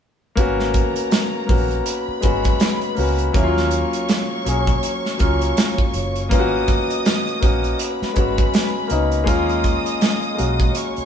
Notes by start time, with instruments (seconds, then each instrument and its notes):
0.35 fingered electric bass G#1, grand piano A#3 B3 C#4 F#4, violin section A#4 A#5, kick, closed hi-hat
0.60 snare
0.74 kick, closed hi-hat
0.96 closed hi-hat
1.11 snare, closed hi-hat
1.47 fingered electric bass A#1, grand piano A#3 B3 C#4 F#4, kick, open hi-hat
1.71 closed hi-hat
1.86 violin section B4 B5, closed hi-hat
2.08 muted fingered electric bass stroke
2.21 fingered electric bass G#1, grand piano G#3 B3 C#4, kick, closed hi-hat
2.25 grand piano F#4
2.44 kick, closed hi-hat
2.60 snare, closed hi-hat
2.81 closed hi-hat
2.95 fingered electric bass C#2, grand piano A#3 B3 C#4 F#4, open hi-hat
3.18 closed hi-hat
3.33 fingered electric bass D#2, grand piano F#3 A#3 C#4 E4, violin section C#5 C#6, kick, closed hi-hat
3.44 grand piano F4
3.57 snare
3.71 closed hi-hat
3.93 closed hi-hat
4.09 snare, closed hi-hat
4.44 fingered electric bass B1, grand piano F#3 A#3 C#4 G#4, closed hi-hat
4.67 kick, closed hi-hat
4.83 closed hi-hat
5.06 snare
5.18 fingered electric bass C#2, grand piano F#3 A#3 C#4 F4, kick, closed hi-hat
5.41 closed hi-hat
5.57 snare, closed hi-hat
5.78 kick
5.94 fingered electric bass F#1, closed hi-hat
6.16 closed hi-hat
6.29 fingered electric bass G#1, grand piano A#3 B3 C#4 F4, violin section D#5 D#6, kick, closed hi-hat
6.39 grand piano F#4
6.68 kick, closed hi-hat
6.90 closed hi-hat
7.05 snare, closed hi-hat
7.27 closed hi-hat
7.40 fingered electric bass A#1, grand piano A#3 B3 C#4 F#4, kick, closed hi-hat
7.64 closed hi-hat
7.79 violin section B4 B5, closed hi-hat
8.02 muted fingered electric bass stroke, snare
8.14 fingered electric bass G#1, grand piano G#3 B3 C#4, kick, closed hi-hat
8.18 grand piano F#4
8.38 kick, closed hi-hat
8.54 snare, closed hi-hat
8.87 fingered electric bass C#2, grand piano A#3 B3 C#4, closed hi-hat
8.92 grand piano D#4
9.12 closed hi-hat
9.24 grand piano G#3 A#3 C#4, violin section D#5 D#6, kick
9.28 fingered electric bass D#2, grand piano F4, closed hi-hat
9.49 closed hi-hat
9.64 kick, closed hi-hat
9.86 closed hi-hat
10.01 snare, closed hi-hat
10.22 closed hi-hat
10.35 grand piano G#3 A#3 C#4 F#4, closed hi-hat
10.40 fingered electric bass B1
10.60 kick, closed hi-hat
10.75 violin section C#5 C#6, closed hi-hat
10.96 muted fingered electric bass stroke, closed hi-hat